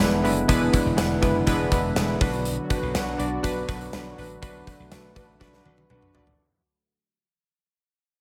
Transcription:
Already playing: analog synth pad D3 G#3 B3 E4
0.00 slap bass E1, synth keys G#3 B3 D4 E4 B4, snare, closed hi-hat, tambourine
0.23 slap bass F#1, synth keys G#3 B3 D4 E4 B4, open hi-hat
0.37 closed hi-hat
0.48 slap bass E1, synth keys G#3 B3 D4 E4 B4, kick, closed hi-hat
0.72 synth keys G#3 B3 D4 E4 B4, kick, closed hi-hat
0.86 slap bass E1
0.96 slap bass E1, synth keys G#3 B3 D4 E4 B4, snare, closed hi-hat, tambourine
1.21 slap bass F#1, synth keys G#3 B3 D4 E4 B4, kick, closed hi-hat
1.46 slap bass E1, synth keys G#3 B3 D4 E4 B4, kick, closed hi-hat
1.72 slap bass E1, synth keys G#3 B3 D4 E4 B4, kick, closed hi-hat
1.96 slap bass E1, synth keys G#3 B3 D4 E4 B4, snare, closed hi-hat, tambourine
2.20 slap bass B1, analog synth pad F#3 F#4, synth keys D4 F#4 B4, kick, open hi-hat
2.33 closed hi-hat
2.45 closed hi-hat
2.70 synth keys D4 F#4 B4, kick, closed hi-hat
2.83 slap bass B1
2.94 slap bass B1, synth keys D4 F#4 B4, snare, closed hi-hat, tambourine
3.18 slap bass B1, synth keys D4 F#4 D5, closed hi-hat
3.43 slap bass B1, synth keys D4 F#4 B4, kick, closed hi-hat
3.68 slap bass B1, synth keys D4 F#4 B4, kick, closed hi-hat
3.81 closed hi-hat
3.93 slap bass B1, synth keys D4 F#4 B4, snare, closed hi-hat, tambourine
4.18 slap bass A1, analog synth pad A3, synth keys D4 F#4 B4, open hi-hat
4.30 closed hi-hat
4.42 slap bass B1, synth keys D4 F#4 B4, kick, closed hi-hat
4.67 synth keys D4 F#4 B4, kick, closed hi-hat
4.80 slap bass B1
4.91 slap bass B1, synth keys D4 F#4 B4, snare, closed hi-hat, tambourine
5.15 slap bass A1, synth keys D4 F#4 B4, analog polysynth D4 F#4 B4, kick, closed hi-hat
5.40 slap bass B1, synth keys D4 F#4 B4, kick, snare
5.53 analog polysynth D4 F#4 B4, snare
5.64 slap bass B1, synth keys D4 F#4 B4, high tom
5.78 high tom
5.89 slap bass B1, synth keys D4 F#4 B4 F#5, analog polysynth D4 F#4 B4, mid tom
6.02 mid tom
6.14 slap bass A1, synth keys D4 F#4 D5, floor tom
6.27 floor tom

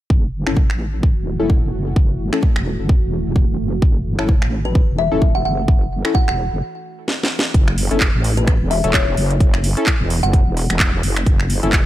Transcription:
0.10 wobble bass F#1, analog synth pad E3 A3 F#4, kick
0.46 wobble bass F#1, synth stab C#4 E4 A4, finger snap
0.57 kick
0.70 wobble bass A1, finger snap
1.03 kick
1.16 wobble bass E1
1.40 wobble bass E1, synth stab C#4 E4 A4
1.50 kick
1.73 wobble bass F#1
1.96 wobble bass F#1, kick
2.33 synth stab C#4 E4 A4, finger snap
2.43 kick
2.56 wobble bass E1, finger snap
2.79 wobble bass F#1
2.89 kick
3.02 wobble bass E1
3.26 wobble bass E1
3.36 kick
3.59 wobble bass F#1
3.82 wobble bass F#1, kick
4.19 wobble bass F#1, synth stab C#4 E4 A4, finger snap
4.29 kick
4.42 wobble bass A1, finger snap
4.65 kalimba B4
4.75 kick
4.88 wobble bass E1
4.99 kalimba E5
5.12 wobble bass E1, synth stab C#4 E4 A4
5.22 kick
5.35 kalimba F#5
5.45 wobble bass F#1, kalimba F#5
5.68 wobble bass F#1, kick
6.05 synth stab C#4 E4 A4, finger snap
6.15 kalimba F#5, kick
6.28 wobble bass E1, kalimba F#5, finger snap
6.51 wobble bass F#1
7.08 snare
7.23 snare
7.39 snare
7.54 wobble bass F#1, kick, closed hi-hat
7.68 finger snap
7.78 open hi-hat
7.91 wobble bass F#1, synth stab C#4 E4 A4, closed hi-hat
8.00 kick, clap, closed hi-hat
8.14 wobble bass A1
8.24 open hi-hat
8.37 kalimba B4, closed hi-hat
8.47 finger snap, kick, closed hi-hat
8.61 wobble bass E1
8.71 kalimba E5, open hi-hat
8.84 wobble bass E1, synth stab C#4 E4 A4, closed hi-hat
8.94 kalimba C#5, kick, clap, closed hi-hat
9.17 wobble bass F#1, open hi-hat
9.30 closed hi-hat
9.40 wobble bass F#1, kick, closed hi-hat
9.54 finger snap
9.64 open hi-hat
9.77 synth stab C#4 E4 A4, closed hi-hat
9.86 kick, clap, closed hi-hat
10.00 wobble bass E1
10.10 open hi-hat
10.23 wobble bass F#1, kalimba F#5, closed hi-hat
10.33 kick, closed hi-hat
10.47 wobble bass E1
10.57 open hi-hat
10.70 wobble bass E1, finger snap, closed hi-hat
10.80 kick, clap, closed hi-hat
11.03 wobble bass F#1, open hi-hat
11.17 finger snap, closed hi-hat
11.26 wobble bass F#1, kick, closed hi-hat
11.40 finger snap
11.50 open hi-hat
11.63 wobble bass F#1, synth stab C#4 E4 A4, closed hi-hat
11.73 kick, clap, closed hi-hat

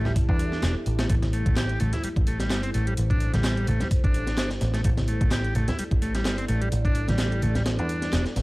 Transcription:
Already playing: picked electric bass A1, ambient pad G3 E4 A4 E5
0.05 transistor combo organ G3, snare, low conga
0.16 kick, closed hi-hat
0.29 picked electric bass E2, transistor combo organ D4, kick
0.39 closed hi-hat
0.52 snare
0.63 picked electric bass E1, snare, clap, closed hi-hat
0.86 picked electric bass A1, closed hi-hat
0.99 transistor combo organ A3, snare, closed hi-hat
1.10 picked electric bass A1, transistor combo organ A3, ambient pad C5, kick, closed hi-hat
1.22 snare, closed hi-hat, high conga
1.33 transistor combo organ A3, closed hi-hat
1.46 picked electric bass A1, kick, closed hi-hat, high conga
1.56 transistor combo organ G4, snare, clap, closed hi-hat
1.69 closed hi-hat
1.80 picked electric bass A1, transistor combo organ A3, closed hi-hat, high conga
1.93 transistor combo organ E4, snare, closed hi-hat, low conga
2.03 transistor combo organ G3, muted picked electric bass stroke, closed hi-hat
2.16 picked electric bass A1, kick, closed hi-hat
2.27 transistor combo organ A3, closed hi-hat
2.40 transistor combo organ G3, snare, closed hi-hat
2.50 picked electric bass G1, snare, clap, closed hi-hat
2.63 transistor combo organ C4, closed hi-hat
2.74 picked electric bass A1, transistor combo organ A3, closed hi-hat
2.87 transistor combo organ G3, closed hi-hat
2.97 picked electric bass A1, closed hi-hat
3.10 transistor combo organ D4, kick, closed hi-hat
3.20 closed hi-hat
3.34 picked electric bass A1, transistor combo organ G3, snare, closed hi-hat, high conga
3.44 snare, clap, closed hi-hat
3.57 closed hi-hat
3.67 picked electric bass A1, transistor combo organ A3, closed hi-hat, high conga
3.80 transistor combo organ G3, snare, closed hi-hat, low conga
3.91 kick, closed hi-hat
4.04 picked electric bass A1, transistor combo organ D4, kick, closed hi-hat
4.14 closed hi-hat
4.27 snare, closed hi-hat
4.38 picked electric bass G1, snare, clap, closed hi-hat
4.50 snare, closed hi-hat
4.61 picked electric bass A1, snare, closed hi-hat
4.74 transistor combo organ A3, snare, closed hi-hat
4.84 picked electric bass A1, transistor combo organ A3, ambient pad D5, kick, closed hi-hat
4.97 snare, closed hi-hat, high conga
5.08 transistor combo organ A3, closed hi-hat
5.21 picked electric bass A1, kick, closed hi-hat, high conga
5.31 transistor combo organ G4, snare, clap, closed hi-hat
5.44 closed hi-hat
5.55 picked electric bass A1, transistor combo organ A3, closed hi-hat, high conga
5.68 transistor combo organ E4, snare, closed hi-hat, low conga
5.79 transistor combo organ G3, muted picked electric bass stroke, closed hi-hat
5.91 picked electric bass A1, kick, closed hi-hat
6.02 transistor combo organ A3, closed hi-hat
6.15 transistor combo organ G3, snare, closed hi-hat
6.25 picked electric bass G1, snare, clap, closed hi-hat
6.38 transistor combo organ C4, closed hi-hat
6.48 picked electric bass A1, transistor combo organ A3, closed hi-hat
6.61 transistor combo organ G3, closed hi-hat
6.72 picked electric bass A1, closed hi-hat
6.85 transistor combo organ D4, kick, closed hi-hat
6.95 closed hi-hat
7.08 picked electric bass A1, transistor combo organ G3, snare, closed hi-hat, high conga
7.18 snare, clap, closed hi-hat
7.32 closed hi-hat
7.42 picked electric bass A1, transistor combo organ A3, closed hi-hat, high conga
7.55 transistor combo organ G3, snare, closed hi-hat, low conga
7.66 snare, closed hi-hat
7.79 picked electric bass E2, transistor combo organ D4, closed hi-hat
7.89 closed hi-hat
8.02 snare, closed hi-hat
8.13 picked electric bass E1, snare, clap, closed hi-hat
8.26 snare, closed hi-hat
8.36 picked electric bass A1, snare, closed hi-hat

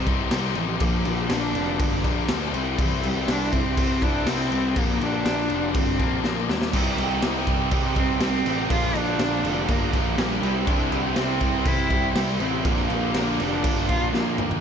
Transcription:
Already playing: distorted electric guitar G3, cello G3, string section G4 D#5 C6 D6
0.06 picked electric bass C2, distorted electric guitar C4 D#4 G4, kick, crash
0.31 picked electric bass C2, distorted electric guitar C3 G3 C4 D#4 G4, snare, crash
0.55 picked electric bass A1, cello F3, distorted electric guitar C4 D#4 G4, crash
0.80 picked electric bass A#1, distorted electric guitar A#2 D3 F3 A#3 D4, string section F4 D5 A#5, kick, crash
1.05 picked electric bass A#1, crash
1.30 picked electric bass A#1, distorted electric guitar D3 F3 A#3 D4, cello D4, snare, crash
1.54 picked electric bass F1, crash
1.80 picked electric bass G1, kick, crash
2.04 picked electric bass A#1, distorted electric guitar F3 A#3 D4, kick, crash
2.29 picked electric bass D2, distorted electric guitar A#2 D3 F3 A#3 D4, snare, crash
2.54 picked electric bass C2, distorted electric guitar C3 G3 C4 E4, string section E4 C5 G5 C6, crash
2.78 picked electric bass C2, distorted electric guitar C3 G3 C4 E4, cello E3, kick, crash
3.03 picked electric bass C2, cello G3, crash
3.28 picked electric bass C2, distorted electric guitar C3 G3 C4 E4, cello D4, snare, crash
3.52 picked electric bass C2, cello C4, kick, crash
3.77 picked electric bass C3, kick, crash
4.02 picked electric bass C2, distorted electric guitar G3 C4 E4, cello D4, kick, crash
4.26 picked electric bass C2, distorted electric guitar C3 G3 C4 E4, cello C4, snare, crash
4.51 picked electric bass C2, distorted electric guitar G3 C4 E4, crash
4.76 picked electric bass A#1, distorted electric guitar A#2 D3 F3 A#3 D4, cello A#3, string section F4 D5 A#5 D6, kick, crash
5.01 picked electric bass A#1, cello D4, crash
5.25 picked electric bass A#1, distorted electric guitar D3 F3 A#3 D4, snare, crash
5.50 picked electric bass F1, crash
5.74 picked electric bass G1, cello C4, kick, crash
5.99 picked electric bass A#1, distorted electric guitar F3 A#3 D4, kick, crash
6.23 picked electric bass A#1, distorted electric guitar A#2 D3 F3 A#3 D4, cello A#3, snare
6.48 picked electric bass D#2, distorted electric guitar F3 A#3 D4, cello G3, snare
6.62 snare
6.73 picked electric bass C2, distorted electric guitar C3 G3 C4 D#4, string section G4 D#5 C6, kick, crash
6.97 picked electric bass C2, distorted electric guitar G3 C4 D#4, crash
7.22 picked electric bass C2, distorted electric guitar C3 G3 C4 D#4, snare, crash
7.47 picked electric bass C2, distorted electric guitar C3 G3 C4 D#4, kick, crash
7.71 distorted electric guitar C3 G3 C4 D#4, picked electric bass C3, kick, crash
7.96 picked electric bass C2, distorted electric guitar C3 G3 C4 D#4, cello C4, kick, crash
8.20 picked electric bass C2, distorted electric guitar C3 G3 C4 D#4, cello C4, snare, crash
8.46 picked electric bass A1, distorted electric guitar G3 C4 D#4, crash
8.70 picked electric bass A#1, distorted electric guitar A#2 D3 F3 A#3 D4, string section F4 D5 A#5, cello F4, kick, crash
8.94 picked electric bass A#1, distorted electric guitar F3 A#3 D4, cello D4, crash
9.19 picked electric bass A#1, distorted electric guitar D3 F3 A#3, snare, crash
9.23 distorted electric guitar D4
9.43 picked electric bass F1, distorted electric guitar A#2 D3 F3 A#3 D4, crash
9.68 picked electric bass G1, distorted electric guitar D3 F3 A#3 D4, cello A#3, kick, crash
9.93 picked electric bass A#1, distorted electric guitar A#2 D3 F3 A#3 D4, cello F3, kick, crash
10.17 picked electric bass A#1, distorted electric guitar A#2 D3 F3 A#3 D4, cello G3, snare, crash
10.42 picked electric bass C2, distorted electric guitar C3 G3 C4 E4, string section E4 C5 G5 C6, crash
10.67 picked electric bass C2, distorted electric guitar C3 G3 C4 E4, cello D4, kick, crash
10.91 picked electric bass C2, distorted electric guitar G3 C4 E4, crash
11.16 picked electric bass C2, distorted electric guitar C3 G3 C4 E4, cello C4, snare, crash
11.40 picked electric bass C2, distorted electric guitar C3 G3 C4 E4, kick, crash
11.65 picked electric bass C3, distorted electric guitar C3 G3 C4 E4, cello E4, kick, crash
11.90 picked electric bass C2, distorted electric guitar C3 G3 C4 E4, kick, crash
12.15 picked electric bass C2, distorted electric guitar C3 G3 C4 E4, cello G3, snare, crash
12.40 picked electric bass A1, distorted electric guitar G3 C4 E4, cello C4, crash
12.65 picked electric bass A#1, distorted electric guitar A#2 D3 F3 A#3 D4, string section F4 D5 A#5 D6, kick, crash
12.89 picked electric bass A#1, distorted electric guitar F3 A#3 D4, cello A#3, crash
13.14 picked electric bass A#1, distorted electric guitar D3 F3 A#3 D4, snare, crash
13.39 picked electric bass F1, distorted electric guitar A#2 D3 F3 A#3 D4, cello D4, crash
13.64 picked electric bass G1, distorted electric guitar D3 F3 A#3 D4, kick, crash
13.89 picked electric bass A#1, distorted electric guitar A#2 D3 F3 A#3 D4, cello F4, kick, crash
14.13 picked electric bass A#1, distorted electric guitar A#2 D3 F3 A#3 D4, cello A#3, snare
14.38 picked electric bass D#2, distorted electric guitar F3 A#3 D4, mid tom
14.51 floor tom

